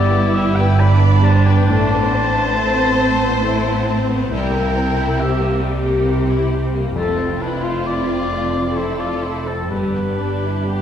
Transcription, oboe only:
Already playing: D5
0.34 E5
0.56 G5
0.80 B5
1.24 A5
1.47 G5
1.68 A5
4.31 G5
5.20 E5
6.97 A4
7.42 B4
7.64 C5
7.86 D5
8.77 C5
9.00 D5
9.22 C5
9.48 A4
9.71 B4

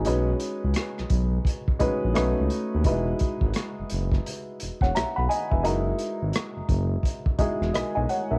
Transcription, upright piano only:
Already playing: G#4
0.05 G#3 C#4 D#4 F#4 B4
1.79 G#3 C#4 D#4 F#4 B4
2.14 A3 C#4 D#4 F#4 B4
2.85 G3 D#4 E4 F#4 B4
2.91 G#3
4.82 C#5 F#5
4.95 E5 A#5
5.16 F#5 B5
5.29 D#5 G#5
5.51 B4 E5
5.63 G#3 D#4 E4 F#4 A#4
7.38 G#3 D#4 E4 F#4 G#4
7.74 A#4 D#5
7.95 D#5 G#5
8.09 C#5 F#5
8.31 A#4 E5

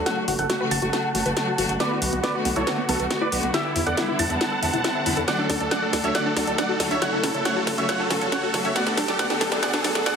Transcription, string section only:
0.06 C#3 F#3 A3 F#4
0.50 C#3 F#3 A3 F#4
0.61 C#3 F#3 A3 F#4
0.82 C#3 F#3 A3 F#4
0.93 C#3 F#3 A3 F#4
1.15 C#3 F#3 A3 F#4
1.26 C#3 F#3 A3 F#4
1.37 C#3 F#3 A3 F#4
1.58 C#3 F#3 A3 F#4
1.80 D3 A3 B3 F#4
2.24 D3 A3 B3 F#4
2.35 D3 A3 B3 F#4
2.56 D3 A3 B3 F#4
2.67 D3 A3 B3 F#4
2.89 D3 A3 B3 F#4
3.00 D3 A3 B3 F#4
3.10 D3 A3 B3 F#4
3.32 D3 A3 B3 F#4
3.54 D3 G3 B3 E4
3.98 D3 G3 B3 E4
4.08 D3 G3 B3 E4
4.30 D3 G3 B3 E4
4.41 D3 G3 B3 E4
4.63 D3 G3 B3 E4
4.74 D3 G3 B3 E4
4.84 D3 G3 B3 E4
5.06 D3 G3 B3 E4
5.28 D3 F#3 A3 F#4
5.71 D3 F#3 A3 F#4
5.82 D3 F#3 A3 F#4
6.04 D3 F#3 A3 F#4
6.15 D3 F#3 A3 F#4
6.36 D3 F#3 A3 F#4
6.47 D3 F#3 A3 F#4
6.58 D3 F#3 A3 F#4
6.80 D3 F#3 A3 F#4
7.02 C#3 F#3 A3 F#4
7.45 C#3 F#3 A3 F#4
7.56 C#3 F#3 A3 F#4
7.78 C#3 F#3 A3 F#4
7.89 C#3 F#3 A3 F#4
8.11 C#3 F#3 A3 F#4
8.21 C#3 F#3 A3 F#4
8.32 C#3 F#3 A3 F#4
8.54 C#3 F#3 A3 F#4
8.76 D3 A3 B3 F#4
9.19 D3 A3 B3 F#4
9.30 D3 A3 B3 F#4
9.52 D3 A3 B3 F#4
9.63 D3 A3 B3 F#4
9.84 D3 A3 B3 F#4
9.95 D3 A3 B3 F#4
10.06 D3 A3 B3 F#4

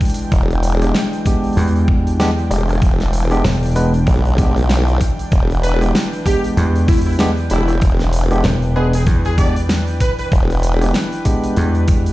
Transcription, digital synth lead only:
5.63 B4
6.26 G4
6.88 E4
7.06 E4
7.51 E4
8.76 G#4
8.95 G#4
9.26 G#4
9.38 D5
10.01 B4
10.19 B4

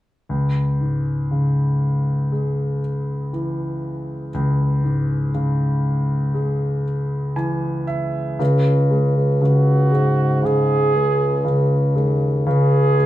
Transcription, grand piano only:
0.29 C#2
0.81 G#2
1.31 C#3
2.32 G#3
3.33 E3
4.34 C#2
4.84 G#2
5.35 C#3
6.35 G#3
7.36 E3 G#5
7.87 E5
8.39 C#3
8.90 G#3
9.41 C#3
9.92 G#3
10.43 C#3
10.94 G#3
11.45 C#3
11.95 G#3
12.47 C#3
12.98 G#3

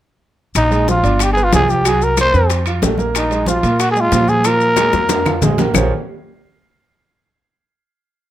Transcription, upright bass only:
0.55 A#1
1.03 G1
1.53 C2
2.34 F2
2.82 A#1
3.63 A#2
4.12 A#2
4.93 F2
5.42 A#1
5.74 A#1

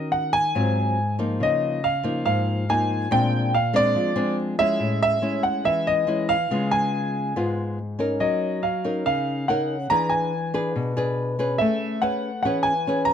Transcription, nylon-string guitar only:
Already playing: D#3 C#4 F#4 A#4
0.55 G#2 F#3 C4 F4
1.19 F3 A#3 D#4
1.40 C#3
2.03 F3 A#3 D#4
2.25 G#2
2.69 F3 A#3 D#4
3.11 A#2 G#3 C4 D4
3.73 G#3 C4 D4
3.95 F3
4.16 G#3 C4 D4
4.59 G#3 C#4 E4
4.79 A2
5.22 G#3 C#4 E4
5.65 E3
6.07 G#3 C#4 E4
6.51 C#3 G#3 B3 F4
7.36 G#2 G#3 B3 F4
7.99 C#4 D#4 A#4
8.20 F#3
8.84 C#4 D#4 A#4
9.06 C#3
9.49 C#4 D#4 A#4
9.90 E3 D4 G#4 B4
10.54 D4 G#4 B4
10.76 B2
10.97 D4 G#4 B4
11.39 C#4 G#4 B4
11.61 A3
12.02 C#4 G#4 B4
12.45 E3 C#4 G#4 B4
12.87 C#4 G#4 B4

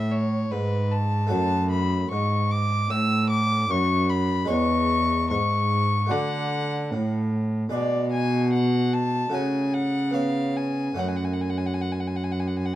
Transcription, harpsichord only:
Already playing: A2 A3 E4 A4
0.52 G#2
1.27 A3 F#4 C#5
1.31 F#2
2.12 G#2
2.90 A2
3.70 F#2
4.45 G#3 G#4 C#5
4.49 E2
5.30 G#2
6.07 A3 F#4 D5
6.11 D3
6.93 A2
7.69 G#3 G#4 D5
7.74 B2
9.30 A3 F#4 C#5
9.34 C#3
10.11 B3 G#4 C#5
10.94 A3 F#4 C#5
10.99 F#2

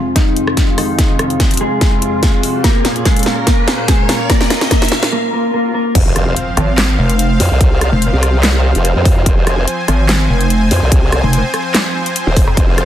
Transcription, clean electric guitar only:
0.16 D#3 D#4
0.78 D#3 D#4
1.61 G#3 G#4
2.64 A#3 A#4
3.05 G#3 G#4
3.47 A#3 A#4
3.88 G#3 G#4
4.29 A#3 A#4
4.71 A#3 A#4
5.12 A#3 A#4
5.33 A#3 A#4
5.54 A#3 A#4
5.74 A#3 A#4

